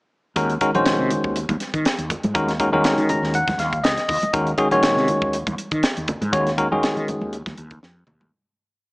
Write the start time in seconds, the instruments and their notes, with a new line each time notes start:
0.36 fretless electric bass D#2, tine electric piano D#3 G#3 C#4 F#4 A#4, kick, closed hi-hat
0.50 closed hi-hat
0.61 tine electric piano D#3 G#3 C#4 F#4 A#4, kick, closed hi-hat
0.74 fretless electric bass A#1, tine electric piano D#3 G#3 C#4 F#4 C5, closed hi-hat, high conga
0.86 snare, closed hi-hat
0.99 fretless electric bass C3
1.10 closed hi-hat, low conga
1.24 fretless electric bass D#2, kick
1.36 closed hi-hat
1.49 fretless electric bass D#2, kick, closed hi-hat, high conga
1.60 snare, closed hi-hat
1.74 fretless electric bass D#3, kick, closed hi-hat
1.85 muted fretless electric bass stroke, snare, closed hi-hat
1.98 fretless electric bass D#2, closed hi-hat
2.10 kick, closed hi-hat, low conga
2.23 fretless electric bass G#2, closed hi-hat, high conga
2.34 fretless electric bass D#2, tine electric piano D#3 G#3 C#4 F#4 A#4, kick, closed hi-hat
2.48 snare, closed hi-hat
2.60 tine electric piano D#3 G#3 C#4 F#4 A#4, kick, closed hi-hat
2.72 fretless electric bass D#2, tine electric piano D#3 G#3 C#4 F#4 A#4, high conga
2.84 snare, closed hi-hat
2.98 fretless electric bass D#3, closed hi-hat
3.09 tine electric piano A#5, closed hi-hat, low conga
3.22 fretless electric bass D#2, snare
3.34 tine electric piano F#5, closed hi-hat
3.47 fretless electric bass D#2, kick, snare, closed hi-hat, high conga
3.58 fretless electric bass D#2, tine electric piano F5, snare, closed hi-hat
3.73 kick, closed hi-hat
3.83 fretless electric bass C#2, tine electric piano D#5, snare, closed hi-hat
3.97 snare, closed hi-hat
4.09 fretless electric bass D#2, tine electric piano D#5, kick, open hi-hat, low conga
4.22 muted fretless electric bass stroke, closed hi-hat, high conga
4.33 fretless electric bass D#2, tine electric piano D#3 G#3 C#4 F#4 A#4, kick, closed hi-hat
4.47 closed hi-hat
4.58 tine electric piano D#3 G#3 C#4 F#4 G#4, kick, closed hi-hat
4.71 fretless electric bass A#1, tine electric piano D#3 G#3 C#4 F#4 C#5, closed hi-hat, high conga
4.83 snare, closed hi-hat
4.96 fretless electric bass C3, snare
5.08 closed hi-hat, low conga
5.22 fretless electric bass D#2, kick
5.33 closed hi-hat
5.47 fretless electric bass D#2, kick, closed hi-hat, high conga
5.58 closed hi-hat
5.71 fretless electric bass D#3, kick, closed hi-hat
5.83 muted fretless electric bass stroke, snare, closed hi-hat
5.97 fretless electric bass D#2, closed hi-hat
6.08 kick, closed hi-hat, low conga
6.21 fretless electric bass G#2, closed hi-hat, high conga
6.33 fretless electric bass D#2, tine electric piano D#3 G#3 C#4 F#4 C#5, kick, closed hi-hat
6.47 snare, closed hi-hat
6.58 tine electric piano D#3 G#3 C#4 F#4 A#4, kick, closed hi-hat
6.72 fretless electric bass D#2, tine electric piano D#3 G#3 C#4 F#4 G#4, high conga
6.83 snare, closed hi-hat
6.96 fretless electric bass D#3, closed hi-hat
7.08 closed hi-hat, high conga, low conga
7.21 fretless electric bass D#2, high conga
7.33 closed hi-hat
7.46 fretless electric bass D#2, kick, snare, closed hi-hat, high conga
7.57 fretless electric bass D#2, closed hi-hat
7.71 kick, closed hi-hat, low conga
7.83 fretless electric bass F2, snare
8.07 fretless electric bass D#2, mid tom, low conga
8.21 floor tom, high conga